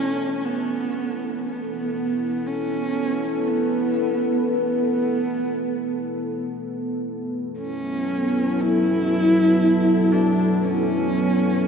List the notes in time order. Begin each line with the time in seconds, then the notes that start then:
Already playing: B3 C#4 E4 A4
0.45 B3
1.46 B3
2.10 B4
2.46 C#4
3.47 B3
4.51 B3
6.57 F#3
7.59 C#4
8.60 E4
10.04 C#5
10.12 D4
10.63 C#4